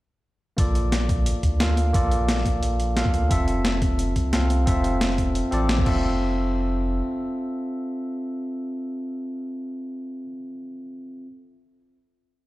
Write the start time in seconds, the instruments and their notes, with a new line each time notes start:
0.57 sub bass A#1, tine electric piano A#3 F4 A4 D5, kick, closed hi-hat
0.75 closed hi-hat
0.92 snare, closed hi-hat
1.09 kick, closed hi-hat
1.26 closed hi-hat
1.43 sub bass D2, kick, closed hi-hat
1.60 tine electric piano A#3 F4 A4 F5, snare, closed hi-hat
1.77 closed hi-hat
1.93 sub bass A#1, tine electric piano A#3 F4 A4 D5, kick, closed hi-hat
2.11 closed hi-hat
2.28 snare, closed hi-hat
2.37 snare
2.46 kick, closed hi-hat
2.63 sub bass A#1, closed hi-hat
2.80 closed hi-hat
2.96 tine electric piano A#3 F4 A4 F5, snare, closed hi-hat
3.06 kick
3.14 sub bass D2, closed hi-hat
3.29 sub bass F1, tine electric piano C4 F4 A4 E5, kick, closed hi-hat
3.48 closed hi-hat
3.65 snare, closed hi-hat
3.82 kick, closed hi-hat
3.99 closed hi-hat
4.16 sub bass C2, kick, closed hi-hat
4.32 sub bass C2, tine electric piano C4 F4 A4 F5, snare, closed hi-hat
4.50 closed hi-hat
4.66 sub bass F1, tine electric piano C4 F4 A4 E5, kick, closed hi-hat
4.84 closed hi-hat
5.01 snare, closed hi-hat
5.10 snare
5.18 kick, closed hi-hat
5.35 closed hi-hat
5.51 sub bass A1, tine electric piano C4 F4 A4 D5, closed hi-hat
5.69 snare, closed hi-hat
5.78 kick
5.84 sub bass F1, tine electric piano C4 F4 A4 E5, kick, crash